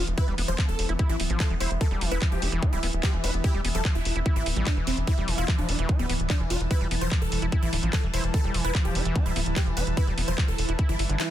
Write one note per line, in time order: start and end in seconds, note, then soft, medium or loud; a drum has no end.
0.00 11.30 E3 medium
0.00 5.09 B3 medium
0.00 11.30 E4 medium
0.00 11.30 B4 medium
0.00 6.09 E5 medium
0.00 sub drop medium
0.07 0.14 E1 medium
0.07 closed hi-hat medium
0.18 0.27 E4 medium
0.18 0.32 B4 loud
0.18 kick loud
0.18 closed hi-hat medium
0.28 0.35 E1 medium
0.28 0.35 G3 medium
0.28 closed hi-hat soft
0.38 0.45 E1 loud
0.38 0.42 B3 medium
0.38 open hi-hat loud
0.48 0.55 E1 loud
0.48 0.55 F3 medium
0.48 0.58 C5 medium
0.48 closed hi-hat medium
0.58 0.68 F3 medium
0.58 kick loud
0.58 clap loud
0.58 closed hi-hat medium
0.69 0.76 E1 medium
0.69 0.87 A4 loud
0.69 closed hi-hat soft
0.79 0.86 E1 loud
0.79 open hi-hat loud
0.89 0.96 E1 loud
0.89 0.93 E4 medium
0.89 closed hi-hat medium
0.99 1.09 E4 medium
0.99 kick loud
0.99 closed hi-hat medium
1.09 1.16 A1 medium
1.09 1.16 E3 medium
1.09 1.23 E4 loud
1.09 closed hi-hat soft
1.20 1.27 D1 loud
1.20 open hi-hat loud
1.30 1.37 A1 loud
1.30 1.40 F3 medium
1.30 closed hi-hat medium
1.40 1.50 F3 medium
1.40 1.49 A4 medium
1.40 kick loud
1.40 clap loud
1.40 closed hi-hat medium
1.50 1.57 E1 medium
1.50 1.54 E3 loud
1.50 closed hi-hat soft
1.60 1.67 E1 loud
1.60 1.70 E4 medium
1.60 1.70 C5 medium
1.60 open hi-hat loud
1.71 1.78 E1 medium
1.71 closed hi-hat medium
1.81 1.88 E3 loud
1.81 1.95 A4 loud
1.81 kick loud
1.81 closed hi-hat medium
1.91 1.98 E1 medium
1.91 2.03 G3 medium
1.91 closed hi-hat soft
2.01 2.08 E1 loud
2.01 2.11 E3 medium
2.01 open hi-hat loud
2.11 2.18 E1 medium
2.11 2.18 E4 loud
2.11 2.21 B4 medium
2.11 closed hi-hat medium
2.22 2.44 F3 loud
2.22 kick loud
2.22 clap loud
2.22 closed hi-hat medium
2.32 2.39 E1 medium
2.32 2.50 G4 loud
2.32 closed hi-hat soft
2.42 2.49 E1 loud
2.42 2.49 E4 loud
2.42 open hi-hat loud
2.52 2.59 E1 loud
2.52 2.64 E3 loud
2.52 closed hi-hat medium
2.62 2.72 E4 medium
2.62 kick loud
2.62 closed hi-hat medium
2.73 2.80 D1 medium
2.73 2.79 G3 medium
2.73 2.87 E4 medium
2.73 closed hi-hat soft
2.83 2.90 D1 loud
2.83 2.87 B3 medium
2.83 open hi-hat loud
2.93 3.00 D1 loud
2.93 closed hi-hat medium
3.03 3.15 F3 medium
3.03 3.13 G4 medium
3.03 kick loud
3.03 clap loud
3.03 closed hi-hat medium
3.13 3.21 E1 medium
3.13 3.25 E3 medium
3.13 closed hi-hat soft
3.24 3.31 E1 loud
3.24 3.31 E4 loud
3.24 3.33 B4 medium
3.24 open hi-hat loud
3.34 3.41 E1 medium
3.34 closed hi-hat medium
3.44 3.54 E4 medium
3.44 3.58 G4 loud
3.44 kick loud
3.44 closed hi-hat soft
3.54 3.61 E1 medium
3.54 3.61 G3 medium
3.54 closed hi-hat soft
3.65 3.72 E1 loud
3.65 3.69 B3 medium
3.65 open hi-hat loud
3.75 3.82 E1 medium
3.75 3.82 F3 medium
3.75 3.84 A4 medium
3.75 closed hi-hat soft
3.85 3.95 F3 medium
3.85 kick loud
3.85 clap loud
3.85 closed hi-hat soft
3.95 4.02 E1 medium
3.95 4.14 E4 medium
3.95 closed hi-hat soft
4.05 4.12 E1 loud
4.05 open hi-hat loud
4.16 4.23 E1 loud
4.16 4.20 E4 medium
4.16 closed hi-hat medium
4.26 4.35 E4 medium
4.26 kick loud
4.26 closed hi-hat medium
4.36 4.43 A1 medium
4.36 4.43 E3 medium
4.36 4.50 E4 medium
4.36 closed hi-hat soft
4.46 4.53 D1 loud
4.46 open hi-hat loud
4.56 4.63 A1 medium
4.56 4.66 G3 loud
4.56 closed hi-hat medium
4.67 4.71 E3 medium
4.67 4.76 D4 medium
4.67 kick loud
4.67 clap loud
4.67 closed hi-hat soft
4.77 4.84 E1 medium
4.77 4.86 E3 medium
4.77 closed hi-hat soft
4.87 4.94 E1 loud
4.87 4.91 E3 medium
4.87 4.96 C4 medium
4.87 open hi-hat loud
4.97 5.04 E1 medium
4.97 closed hi-hat medium
5.07 5.14 E3 loud
5.07 11.30 G3 medium
5.07 5.21 E4 loud
5.07 kick loud
5.07 closed hi-hat medium
5.18 5.25 E1 medium
5.18 5.29 G3 medium
5.18 closed hi-hat soft
5.28 5.35 E1 loud
5.28 5.38 E3 medium
5.28 open hi-hat loud
5.38 5.45 E1 medium
5.38 5.45 E4 loud
5.38 5.47 F4 medium
5.38 closed hi-hat soft
5.48 5.70 F3 loud
5.48 kick loud
5.48 clap loud
5.48 closed hi-hat medium
5.58 5.65 E1 medium
5.58 5.77 D4 loud
5.58 closed hi-hat soft
5.69 5.76 E1 loud
5.69 5.75 E4 loud
5.69 open hi-hat loud
5.79 5.86 E1 loud
5.79 5.91 E3 loud
5.79 closed hi-hat medium
5.89 5.99 E4 medium
5.89 kick loud
5.89 closed hi-hat medium
5.99 6.06 D1 medium
5.99 6.06 G3 medium
5.99 6.13 B3 medium
5.99 closed hi-hat soft
6.07 6.16 D1 loud
6.07 6.14 B3 medium
6.07 11.30 A5 medium
6.07 open hi-hat loud
6.20 6.27 D1 medium
6.20 closed hi-hat medium
6.30 6.42 F3 medium
6.30 6.39 D4 medium
6.30 kick loud
6.30 clap loud
6.30 closed hi-hat medium
6.40 6.47 E1 medium
6.40 6.52 E3 medium
6.40 closed hi-hat soft
6.50 6.57 E1 loud
6.50 6.57 E4 loud
6.50 6.60 F4 medium
6.50 open hi-hat loud
6.60 6.67 E1 medium
6.60 closed hi-hat medium
6.71 6.80 E4 medium
6.71 6.85 B4 loud
6.71 kick loud
6.71 closed hi-hat medium
6.81 6.88 E1 medium
6.81 6.88 G3 medium
6.81 closed hi-hat soft
6.91 6.98 E1 loud
6.91 6.95 B3 medium
6.91 open hi-hat loud
7.01 7.08 E1 medium
7.01 7.08 F3 medium
7.01 7.11 C5 medium
7.01 closed hi-hat medium
7.12 7.21 F3 medium
7.12 kick loud
7.12 clap loud
7.12 closed hi-hat medium
7.22 7.29 E1 medium
7.22 7.40 A4 loud
7.22 closed hi-hat soft
7.32 7.39 E1 loud
7.32 open hi-hat loud
7.42 7.49 E1 loud
7.42 7.46 E4 medium
7.42 closed hi-hat medium
7.52 7.62 E4 medium
7.52 kick loud
7.52 closed hi-hat medium
7.62 7.70 A1 medium
7.62 7.69 E3 medium
7.62 7.76 E4 medium
7.62 closed hi-hat soft
7.73 7.80 D1 loud
7.73 7.77 D3 loud
7.73 open hi-hat loud
7.83 7.90 A1 medium
7.83 7.93 F3 medium
7.83 closed hi-hat medium
7.93 8.03 F3 medium
7.93 8.02 A4 medium
7.93 kick loud
7.93 clap loud
7.93 closed hi-hat medium
8.03 8.10 E1 medium
8.03 8.07 E3 loud
8.03 closed hi-hat soft
8.14 8.21 E1 loud
8.14 8.23 E4 medium
8.14 8.23 C5 medium
8.14 open hi-hat loud
8.24 8.31 E1 medium
8.24 closed hi-hat medium
8.34 8.41 E3 loud
8.34 8.48 A4 loud
8.34 kick loud
8.34 closed hi-hat medium
8.44 8.51 E1 medium
8.44 8.56 G3 medium
8.44 closed hi-hat soft
8.54 8.61 E1 loud
8.54 8.64 E3 medium
8.54 open hi-hat loud
8.64 8.72 E1 loud
8.64 8.71 E4 loud
8.64 8.74 B4 medium
8.64 closed hi-hat medium
8.75 8.97 F3 loud
8.75 kick loud
8.75 clap loud
8.75 closed hi-hat medium
8.85 8.92 E1 medium
8.85 9.04 G4 medium
8.85 closed hi-hat soft
8.95 9.02 E1 loud
8.95 9.02 E4 loud
8.95 open hi-hat loud
9.05 9.12 E1 loud
9.05 9.17 E3 loud
9.05 closed hi-hat medium
9.16 9.25 E4 medium
9.16 kick loud
9.16 closed hi-hat medium
9.26 9.33 D1 medium
9.26 9.33 G3 medium
9.26 9.40 E4 loud
9.26 closed hi-hat soft
9.36 9.43 D1 loud
9.36 9.40 B3 medium
9.36 open hi-hat loud
9.46 9.53 D1 loud
9.46 closed hi-hat medium
9.56 9.68 F3 medium
9.56 9.66 G4 medium
9.56 kick loud
9.56 clap loud
9.56 closed hi-hat medium
9.67 9.74 E1 medium
9.67 9.78 E3 medium
9.67 closed hi-hat soft
9.77 9.84 E1 loud
9.77 9.84 E4 loud
9.77 9.86 B4 medium
9.77 open hi-hat loud
9.87 9.94 E1 medium
9.87 closed hi-hat medium
9.97 10.07 E4 medium
9.97 10.11 B4 loud
9.97 kick loud
9.97 closed hi-hat medium
10.07 10.14 E1 medium
10.07 10.14 G3 medium
10.07 closed hi-hat soft
10.18 10.25 E1 loud
10.18 10.22 B3 medium
10.18 open hi-hat loud
10.28 10.35 E1 loud
10.28 10.35 F3 medium
10.28 10.37 C5 medium
10.28 closed hi-hat medium
10.38 10.48 F3 medium
10.38 kick loud
10.38 clap loud
10.38 closed hi-hat medium
10.48 10.55 E1 medium
10.48 10.67 A4 loud
10.48 closed hi-hat soft
10.58 10.65 E1 loud
10.58 open hi-hat loud
10.69 10.76 E1 loud
10.69 10.73 E4 medium
10.69 closed hi-hat medium
10.79 10.89 E4 medium
10.79 kick loud
10.79 closed hi-hat medium
10.79 swell medium
10.89 10.96 G1 medium
10.89 10.96 E3 medium
10.89 11.03 E4 medium
10.89 closed hi-hat soft
10.99 11.06 G1 loud
10.99 open hi-hat loud
11.09 11.16 G1 medium
11.09 11.16 D3 medium
11.09 closed hi-hat medium
11.20 11.29 E3 medium
11.20 11.29 E4 medium
11.20 clap loud
11.20 closed hi-hat medium